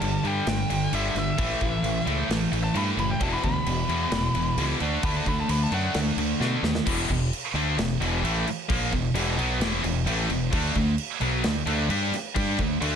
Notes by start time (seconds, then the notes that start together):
Already playing: G2 D3 G3 A5
0.01 G1 G2 D3, crash
0.24 G2 D3 G3 G5, crash
0.47 G1 G2 D3 G3, snare, crash
0.70 G1 G2 D3, crash
0.92 G1 G2 D3 G3 E5, crash
1.15 G1 G2 D3 E5, snare, crash
1.38 A1 A2 E3 A3, kick, crash
1.61 A1 A2 E3, kick, crash
1.83 A1 A2 E3, crash
2.06 C#2 A2 E3 A3, crash
2.29 A1 A2 E3 A3, snare, crash
2.52 A1 A2 E3, crash
2.64 A5
2.74 G2 A2 E3 A3 B5, crash
2.97 F#1 A2 E3 B5, crash
3.10 G5
3.20 E1 E2 B2 E3 A5, kick, crash
3.33 B5
3.43 D2 E2 B2 B5, kick, crash
3.66 E1 E2 B2, crash
3.88 E2 B2 E3, crash
4.11 E1 E2 B2 E3, snare, crash
4.34 E1 E2 B2, crash
4.57 C#2 E2 B2 E3, crash
4.80 D2 D3 A3 D4, crash
5.03 D2 D3 A3 D4 B5, kick, crash
5.16 A5
5.26 D2 D3 A3 B5, kick, crash
5.40 A5
5.49 D2 D3 A3 B5, crash
5.63 A5
5.71 F#2 D3 A3 D4 F#5, crash
5.94 D2 D3 A3, snare, crash
6.16 D2 D3 A3, crash
6.40 B2 D3 A3 D4, snare
6.62 D#2 D3 A3, snare
6.75 snare
6.86 E1 E2 B2 E3, kick, crash
7.09 E1 E2 B2, kick, crash
7.33 crash
7.54 D2 D3 A3 D4, crash
7.77 E1 E2 B2, snare, crash
8.00 E1 E2 B2 E3, crash
8.23 A1 A2 E3 A3, crash
8.45 muted fingered electric bass stroke, muted distorted electric guitar stroke, crash
8.69 A#1 A#2 F3 A#3, kick, crash
8.92 E1 E2 B2, kick, crash
9.14 E1 E2 B2 E3, crash
9.38 B1 B2 F#3 B3, crash
9.60 E1 E2 B2 E3, snare, crash
9.83 E1 E2 B2, crash
10.06 A1 A2 E3 A3, crash
10.29 E1 E2 B2, crash
10.52 D2 D3 A3 D4, kick, crash
10.75 D2 D3 A3, kick, crash
10.98 crash
11.21 B1 B2 F#3 B3, crash
11.44 D2 D3 A3, snare, crash
11.66 D2 D3 A3 D4, crash
11.89 G2 G3 D4 G4, crash
12.11 muted fingered electric bass stroke, muted distorted electric guitar stroke, snare, crash
12.35 G2 G3 D4 G4, kick, crash
12.58 D2 D3 A3, kick, crash
12.81 D2 D3 A3 D4, crash